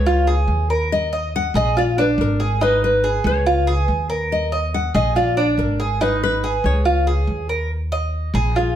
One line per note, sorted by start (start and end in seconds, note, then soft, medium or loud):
0.00 0.44 C#2 medium
0.00 0.67 C#5 loud
0.06 0.27 F4 medium
0.27 0.68 G#4 medium
0.48 1.48 D#2 medium
0.70 1.11 A#4 medium
0.92 1.35 D#5 loud
1.13 1.54 D#5 medium
1.36 1.54 F#5 loud
1.54 2.14 A#1 medium
1.54 1.76 G#4 medium
1.54 1.77 D#5 medium
1.77 1.97 F4 medium
1.77 1.84 D5 medium
1.98 2.39 D4 medium
1.98 2.05 B4 medium
2.18 3.18 G#1 medium
2.18 2.62 A#4 medium
2.40 2.60 G#4 medium
2.61 3.02 D#4 medium
2.61 2.82 B4 medium
2.84 3.26 B4 medium
3.04 3.45 G#4 medium
3.24 3.84 C#2 loud
3.24 3.85 C#5 medium
3.46 3.67 F4 medium
3.67 4.08 G#4 medium
3.85 4.88 D#2 medium
3.85 4.07 B4 medium
4.10 4.51 A#4 medium
4.32 4.74 D#5 medium
4.52 4.93 D#5 medium
4.74 4.95 F#5 loud
4.94 5.54 A#1 loud
4.94 5.15 G#4 medium
4.94 5.16 D#5 medium
5.16 5.37 F4 medium
5.16 5.60 D5 medium
5.37 5.78 D4 medium
5.58 6.58 G#1 medium
5.58 5.98 A#4 medium
5.80 6.00 G#4 medium
6.01 6.42 D#4 medium
6.01 6.22 B4 medium
6.23 6.62 B4 medium
6.44 6.85 G#4 medium
6.64 7.24 C#2 medium
6.64 7.46 C#5 medium
6.85 7.06 F4 medium
7.07 7.48 G#4 medium
7.27 8.28 D#2 medium
7.49 7.70 A#4 medium
7.92 8.33 D#5 medium
8.34 8.76 A#1 loud
8.34 8.55 G#4 medium
8.56 8.76 F4 medium
8.56 8.76 G#4 medium